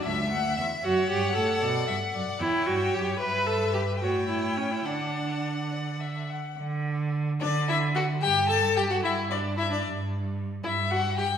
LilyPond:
<<
  \new Staff \with { instrumentName = "Violin" } { \time 6/8 \key e \dorian \tempo 4. = 74 e''8 fis''8 e''8 cis''4. | d''8 e''8 d''8 cis''4. | b'4. cis''4. | d''4. d''8 e''8 fis''8 |
r4. d''8 e''8 fis''8 | g''8 a''8 g''16 fis''16 e''8 d''8 e''16 d''16 | r4. e''8 fis''8 g''8 | }
  \new Staff \with { instrumentName = "Violin" } { \time 6/8 \key e \dorian e''4. fis''4.~ | fis''4. g''4. | e''4. g''4. | fis''2~ fis''8 r8 |
r4. d'8 e'8 fis'8 | g'8 a'8 g'16 fis'16 e'8 d'8 e'16 d'16 | r4. e'8 fis'8 g'8 | }
  \new Staff \with { instrumentName = "Viola" } { \time 6/8 \key e \dorian r4. fis'8 g'8 a'8 | r4. e'8 fis'8 g'8 | b'8 a'8 g'8 fis'8 e'8 cis'16 e'16 | d'4. r4. |
r4. d'8 e'8 fis'8 | g'8 a'8 g'16 fis'16 e'8 d'8 e'16 d'16 | r4. e'8 fis'8 g'8 | }
  \new Staff \with { instrumentName = "Cello" } { \clef bass \time 6/8 \key e \dorian cis,8 d,8 e,8 fis,8 g,8 a,8 | b,8 g,8 fis,8 e,8 g,8 fis,8 | g,4. a,4. | d2~ d8 r8 |
d4. d4. | g,4. g,4. | g,4. g,4. | }
>>